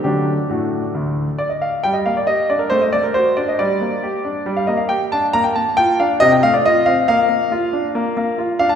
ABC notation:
X:1
M:4/4
L:1/16
Q:1/4=138
K:Gm
V:1 name="Grand piano"
[DG]4 [A,D^F]8 d e =f2 | g e f d e2 d B c e d B c2 d e | d8- d f e f g2 a2 | b g a2 g2 f2 e g f d e2 f2 |
f12 z2 f a |]
V:2 name="Grand piano"
[D,^F,A,]4 A,,4 D,,4 z4 | G,2 B,2 G2 D2 A,2 A,2 ^F2 D2 | G,2 B,2 G2 D2 G,2 B,2 G2 D2 | B,2 B,2 F2 D2 C,2 A,2 F2 C2 |
B,2 B,2 F2 D2 B,2 B,2 F2 D2 |]